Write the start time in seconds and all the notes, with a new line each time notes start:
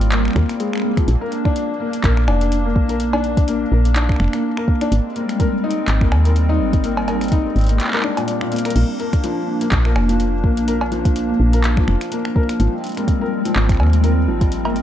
Already playing: G#1 G3 A#3 C4 F4 A#4
0.01 closed hi-hat
0.12 A#3, clap, closed hi-hat
0.25 finger snap
0.28 finger snap
0.31 finger snap
0.33 D#2 A#3, finger snap, kick
0.36 finger snap, closed hi-hat
0.43 finger snap
0.46 finger snap
0.49 finger snap, closed hi-hat
0.60 G#3, closed hi-hat
0.73 finger snap
0.75 finger snap
0.78 finger snap
0.80 finger snap
0.82 A#3, finger snap
0.97 F3, finger snap, kick, closed hi-hat
1.08 A#1 D4, closed hi-hat
1.21 A#4
1.32 closed hi-hat
1.45 D4, finger snap, kick
1.56 closed hi-hat
1.80 A#3
1.93 closed hi-hat
2.04 A#1 A#4, kick, clap, closed hi-hat
2.17 finger snap
2.28 F1 D4, finger snap, cowbell
2.41 closed hi-hat
2.52 closed hi-hat
2.65 A#3
2.76 A#1, kick
2.89 A#4, closed hi-hat
3.00 closed hi-hat
3.13 D4, cowbell
3.24 closed hi-hat
3.37 kick, closed hi-hat
3.48 A#3, closed hi-hat
3.72 A#1 A#4
3.85 closed hi-hat
3.96 D4, clap, closed hi-hat
4.09 finger snap, kick
4.12 finger snap
4.16 F1, finger snap
4.20 finger snap
4.24 finger snap
4.28 finger snap
4.33 A#3, finger snap, closed hi-hat
4.57 A#4, finger snap
4.68 kick
4.81 D4, finger snap, closed hi-hat
4.92 G#1 G3 G#3 C4, closed hi-hat
5.16 A#3, closed hi-hat
5.29 finger snap, closed hi-hat
5.40 A#4, kick, closed hi-hat
5.64 D#4
5.71 closed hi-hat
5.88 G#1, clap, closed hi-hat
6.01 A#3, finger snap, kick
6.12 D#2, finger snap, cowbell
6.25 A#4, closed hi-hat
6.36 closed hi-hat
6.49 D#4
6.60 G#1
6.73 kick, closed hi-hat
6.84 A#3, closed hi-hat
6.97 cowbell
7.08 A#4, closed hi-hat, cowbell
7.21 finger snap, closed hi-hat
7.24 closed hi-hat
7.28 D#4, kick, closed hi-hat
7.32 closed hi-hat
7.56 G#1, closed hi-hat
7.59 closed hi-hat
7.61 closed hi-hat
7.64 closed hi-hat
7.67 A#3, closed hi-hat
7.69 closed hi-hat
7.80 clap, closed hi-hat
7.84 clap
7.88 clap
7.93 A#4, finger snap, clap
7.96 clap
8.00 D4, finger snap, clap
8.17 A#2, closed hi-hat, cowbell
8.28 closed hi-hat
8.41 A#2, finger snap
8.52 A#3, closed hi-hat
8.56 closed hi-hat
8.58 closed hi-hat
8.65 A#4, finger snap, closed hi-hat
8.70 closed hi-hat
8.76 A#1 A#3 D4, closed hi-hat, crash
9.00 A#4, closed hi-hat
9.13 finger snap, kick, closed hi-hat
9.24 F3, closed hi-hat
9.61 A#3, closed hi-hat
9.72 A#1, kick, clap, closed hi-hat
9.85 A#4, finger snap
9.96 F1, finger snap, cowbell
10.09 F3, closed hi-hat
10.20 closed hi-hat
10.44 A#1 A#3, kick
10.57 closed hi-hat
10.68 A#4, closed hi-hat
10.81 cowbell
10.92 F3, closed hi-hat
11.05 kick, closed hi-hat
11.16 closed hi-hat
11.29 A#3
11.40 A#1
11.53 A#4, closed hi-hat
11.64 clap, closed hi-hat
11.77 F3, finger snap, kick
11.88 F1, finger snap
12.01 finger snap, closed hi-hat
12.12 A#3, closed hi-hat
12.25 finger snap
12.36 A#4, kick
12.49 finger snap, closed hi-hat
12.60 G#1 F3 G3 G#3 C4, closed hi-hat
12.84 closed hi-hat
12.87 closed hi-hat
12.89 closed hi-hat
12.92 closed hi-hat
12.95 A#3, finger snap, closed hi-hat
12.97 closed hi-hat
13.08 kick, closed hi-hat
13.21 A#4
13.45 F3, closed hi-hat
13.56 G#1, clap
13.69 finger snap, kick, closed hi-hat
13.72 finger snap
13.75 finger snap
13.77 D#2, finger snap
13.80 A#3, finger snap, cowbell
13.83 finger snap
13.87 finger snap
13.90 finger snap, closed hi-hat
14.04 A#4, closed hi-hat
14.28 G#1 F3
14.41 kick, closed hi-hat
14.52 closed hi-hat
14.65 A#3, cowbell
14.76 closed hi-hat